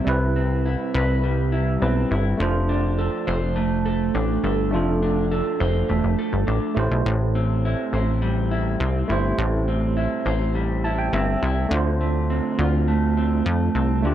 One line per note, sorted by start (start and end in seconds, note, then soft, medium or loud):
0.00 1.23 G3 medium
0.00 0.36 C4 medium
0.00 0.64 E4 soft
0.00 0.94 B4 medium
0.04 0.76 C2 loud
0.04 2.40 C3 medium
0.04 1.77 G3 medium
0.04 1.78 C4 medium
0.04 1.78 E4 medium
0.09 1.79 B4 medium
0.36 1.81 C4 medium
0.66 1.51 E4 medium
0.94 1.78 C2 loud
0.94 2.46 B4 medium
1.24 2.46 G3 medium
1.52 2.10 E4 medium
1.80 2.05 B1 medium
1.80 2.39 G3 medium
1.80 2.40 C4 soft
1.80 2.69 C4 medium
1.80 2.40 E4 soft
1.80 2.40 B4 medium
2.11 2.34 G1 medium
2.11 2.46 E4 medium
2.37 3.09 F1 loud
2.37 4.73 F3 medium
2.37 4.68 A3 medium
2.37 4.68 D4 medium
2.37 4.69 F4 medium
2.42 4.70 C5 medium
2.69 4.13 D4 medium
2.98 3.85 A4 medium
3.27 4.11 F1 loud
3.27 5.60 C5 medium
3.56 5.89 A3 medium
3.86 4.44 A4 medium
4.15 4.38 A1 medium
4.15 5.01 D4 medium
4.44 4.75 G1 medium
4.44 5.31 A4 medium
4.71 5.42 F1 loud
4.71 6.83 F3 medium
4.71 6.72 A3 medium
4.71 6.73 D4 medium
4.71 6.73 F4 medium
4.76 6.74 A4 medium
5.03 6.46 D4 medium
5.32 6.18 A4 medium
5.60 5.84 F1 medium
5.60 7.94 C5 medium
5.89 6.01 E1 medium
5.89 8.22 A3 medium
6.04 6.16 F1 medium
6.19 7.65 A4 medium
6.33 6.45 G1 medium
6.47 6.59 A1 medium
6.47 6.82 D4 medium
6.74 6.88 A1 medium
6.74 7.05 A2 medium
6.74 9.05 A3 medium
6.74 9.05 E4 medium
6.74 9.06 G4 medium
6.79 9.07 C5 medium
6.91 7.03 B1 medium
7.06 7.75 A1 loud
7.06 9.38 A2 medium
7.35 8.81 C4 medium
7.65 8.50 E4 medium
7.93 8.76 A1 medium
7.93 10.25 C5 medium
8.22 10.54 G3 medium
8.51 9.09 E4 medium
8.80 9.04 C2 medium
8.80 9.68 C4 medium
9.08 9.33 G1 medium
9.08 11.38 A3 medium
9.08 11.38 E4 medium
9.08 9.96 E4 medium
9.08 11.39 G4 medium
9.12 11.40 C5 medium
9.38 10.08 A1 loud
9.38 11.72 A2 medium
9.68 11.14 C4 medium
9.97 10.84 E4 medium
10.26 11.09 A1 medium
10.26 13.76 C5 medium
10.55 11.78 G3 medium
10.84 11.42 E4 medium
10.84 10.98 A5 medium
10.99 11.12 G5 medium
11.13 11.37 G1 medium
11.13 12.30 C4 medium
11.13 11.68 E5 medium
11.43 11.66 C2 medium
11.43 11.78 E4 medium
11.69 12.41 D2 loud
11.69 14.04 D3 medium
11.69 13.99 A3 medium
11.69 14.00 D4 medium
11.69 14.01 F4 medium
11.74 14.02 C5 medium
12.01 12.87 A3 medium
12.30 13.17 C4 medium
12.59 13.42 D2 loud
12.59 14.15 F4 medium
12.88 13.44 A3 medium
13.17 13.75 C4 medium
13.46 13.70 F2 medium
13.46 14.15 A3 medium
13.75 14.06 C2 medium
13.75 14.15 C4 medium
14.02 14.15 D2 loud
14.02 14.15 D3 medium
14.02 14.15 A3 medium
14.02 14.15 D4 medium
14.02 14.15 F4 medium
14.07 14.15 G4 medium